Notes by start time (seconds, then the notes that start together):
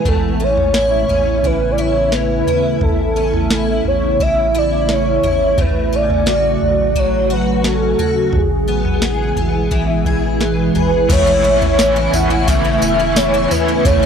Already playing: E3 B3 E4 G#4
0.05 A1 A2 C#3 A3 B3 A4, kick, floor tom
0.40 C#4 C#5
0.57 floor tom
0.74 E4, snare
1.08 A1 C#4, floor tom
1.43 A1 E3 B4, kick
1.72 D5
1.78 E4 C#5
2.12 C#4 B4, snare
2.47 E4, floor tom
2.81 A1 A4, kick, floor tom
3.16 C#4
3.33 floor tom
3.50 E4, snare
3.84 A1 C#5, floor tom
4.20 A1 E3 E5, kick
4.55 E4 D5
4.89 C#4 C#5, snare
5.23 G#1 E4, floor tom
5.57 A1 A2 F#3 F#4 B4, kick, floor tom
5.93 C#4 D5
6.10 floor tom
6.26 F#4, snare
6.61 A1, floor tom
6.95 A1 F#3 C#5, kick
7.30 F#4 B4
7.64 C#4 A4, snare
7.99 F#4, floor tom
8.33 A1 B2 E3 G#3 E4, kick, floor tom
8.37 G#4
8.68 B3
8.85 floor tom
9.02 G#4, snare
9.36 A1 B3, floor tom
9.71 A1 E3, kick
10.06 G#4, kick
10.40 B3, snare
10.74 G#1 G#4 B4, floor tom
11.09 A1 A2 C#3 E3 A3 B3 C#4 E4 C#5, kick, floor tom, crash, tambourine
11.27 C#4
11.43 B3 C#4 E4
11.62 C#4, floor tom
11.78 E3 B3 C#4 E4, snare, tambourine
11.96 E4
12.12 A1 B3 C#4 E4 F#5, floor tom, tambourine
12.30 E4
12.41 F#5
12.47 A2 E3 B3 C#4 E4 E5, kick, tambourine
12.65 C#4
12.81 E1 B3 C#4 E4, tambourine
13.00 C#4
13.16 E3 B3 C#4 E4 C#5, snare, tambourine
13.34 E4
13.51 B3 C#4 E4 B4, floor tom, tambourine
13.68 E4
13.85 A1 A2 E3 B3 C#4 E4 C#5, kick, floor tom, tambourine
14.03 C#4